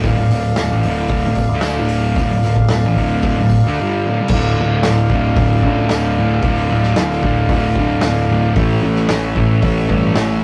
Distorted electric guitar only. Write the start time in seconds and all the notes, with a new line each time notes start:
0.04 D2 A2
0.17 D2 A2
0.31 D2 A2
0.61 D2 A2
0.72 A2 E3
0.87 D2 A2 D3
1.26 D2 A2
1.54 D3 A3 D4
1.78 D2 A2 D3
2.19 D2 A2
2.33 D2 A2
2.44 D2 A2
2.70 D2 A2
2.85 A2 E3
2.96 D2 A2 D3
3.41 D2 A2
3.67 D3 A3
3.81 G2 D3 G3
4.07 D2 A2
4.21 C3 G3
4.33 D2 A2 D3
4.61 D2 A2 D3
4.89 D2 A2 D3
5.12 D2 A2 D3
5.40 D2 A2 D3
5.65 D2 A2 D3
5.92 D2 A2 D3
6.18 D2 A2 D3
6.45 D2 A2 D3
6.72 D2 A2 D3
6.99 D2 A2 D3
7.23 D2 A2 D3
7.51 D2 A2 D3
7.78 D2 A2 D3
8.04 D2 A2 D3
8.32 D2 A2 D3
8.57 A2 E3 A3
8.84 A2 E3 A3
9.11 A2 E3 A3
9.38 A2 E3 A3
9.62 A2 E3 A3
9.89 A2 E3 A3
10.15 A2 E3 A3